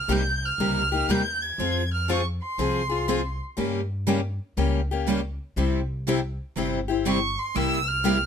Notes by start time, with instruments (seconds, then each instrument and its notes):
Already playing: violin F6
0.08 upright bass C2, steel-string acoustic guitar C3 G3 A#3 D#4 G4
0.13 violin G6
0.46 violin F6
0.58 upright bass C#2, steel-string acoustic guitar C3 G3 A#3 D#4 G4
0.92 steel-string acoustic guitar A#3 D#4 G4
1.08 upright bass D#2, steel-string acoustic guitar C3 G3 A#3 D#4 G4, violin G6
1.43 violin G#6
1.58 upright bass F2, steel-string acoustic guitar F3 C4 F4 G#4
1.94 violin F6
2.09 steel-string acoustic guitar F3 C4 F4 G#4, violin C#6
2.43 violin C6
2.58 upright bass C2, steel-string acoustic guitar F3 C4 F4 G#4
2.89 steel-string acoustic guitar C4 F4 G#4
3.08 steel-string acoustic guitar F3 C4 F4 G#4
3.57 upright bass G2, steel-string acoustic guitar C#3 G3 A#3 C#4 G4
4.07 steel-string acoustic guitar C#3 G3 A#3 C#4 G4
4.57 upright bass C#2, steel-string acoustic guitar C#3 G3 A#3 C#4 G4
4.91 steel-string acoustic guitar A#3 C#4 G4
5.07 steel-string acoustic guitar C#3 G3 A#3 C#4 G4
5.56 upright bass C2, steel-string acoustic guitar C3 G3 C4 E4 G4
6.08 steel-string acoustic guitar C3 G3 C4 E4 G4
6.56 upright bass G1, steel-string acoustic guitar C3 G3 C4 E4 G4
6.88 steel-string acoustic guitar C4 E4 G4
7.06 steel-string acoustic guitar C3 G3 C4 E4 G4, violin C#6
7.39 violin C6
7.56 upright bass C2, steel-string acoustic guitar C3 G3 A#3 E4 G4, violin E6
7.88 violin F6
8.04 steel-string acoustic guitar C3 G3 A#3 E4 G4